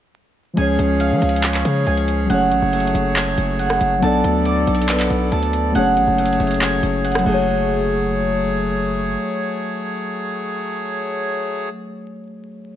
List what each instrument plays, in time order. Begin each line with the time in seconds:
0.53 808-style bass C#2, synth keys F3 G#3 C#4, accordion F3 C#4 G#4 C#5, harp G#5, closed hi-hat
0.59 synth keys G#4 C#5
0.79 808-style bass C#2, closed hi-hat
1.00 harp F5, closed hi-hat
1.11 808-style bass F3
1.22 808-style bass C#2, closed hi-hat
1.29 closed hi-hat
1.36 closed hi-hat
1.43 harp C#4, clap, closed hi-hat
1.54 clap
1.65 808-style bass C#3, closed hi-hat
1.87 808-style bass C#2, harp G#5, closed hi-hat
1.97 closed hi-hat
2.08 closed hi-hat
2.26 808-style bass F#1, synth keys F#3 A3 C#4, accordion F#3 A3 C#5, harp F#5, closed hi-hat
2.32 synth keys G#4 C#5
2.51 808-style bass A1, closed hi-hat
2.62 808-style bass F#1
2.73 harp A3, closed hi-hat
2.80 closed hi-hat
2.87 closed hi-hat
2.94 808-style bass F#1, closed hi-hat
3.16 harp G#5, clap, closed hi-hat
3.38 808-style bass F#1, closed hi-hat
3.59 harp F#5, closed hi-hat
3.70 cross-stick
3.81 808-style bass F#1, closed hi-hat
3.99 808-style bass B1, synth keys F#3 B3 D4, accordion B3 A4 D5, harp A5, closed hi-hat
4.04 synth keys A4 D5
4.24 808-style bass D2, closed hi-hat
4.45 harp D5, closed hi-hat
4.67 808-style bass B1, closed hi-hat
4.74 closed hi-hat
4.82 closed hi-hat
4.89 harp B3, clap, closed hi-hat
5.00 clap
5.10 808-style bass B1, closed hi-hat
5.32 808-style bass D2, harp A5, closed hi-hat
5.43 closed hi-hat
5.53 closed hi-hat
5.71 808-style bass F#1, synth keys F#3 A3 C#4, accordion A3 G#4 C#5, harp F#5, closed hi-hat
5.77 synth keys G#4 C#5
5.97 808-style bass A1, closed hi-hat
6.08 808-style bass F#1
6.18 harp A3, closed hi-hat
6.26 closed hi-hat
6.33 closed hi-hat
6.40 808-style bass F#1, closed hi-hat
6.47 closed hi-hat
6.51 closed hi-hat
6.54 closed hi-hat
6.61 harp G#5, clap, closed hi-hat
6.83 808-style bass F#1, closed hi-hat
7.05 harp F#5, closed hi-hat
7.12 cross-stick, closed hi-hat
7.19 synth keys F#3, harp A3, closed hi-hat
7.24 808-style bass F#1, accordion F#3 A3 G#4 C#5, synth keys A3, harp F#4, crash
7.29 synth keys G#4, harp G#4
7.34 synth keys C#5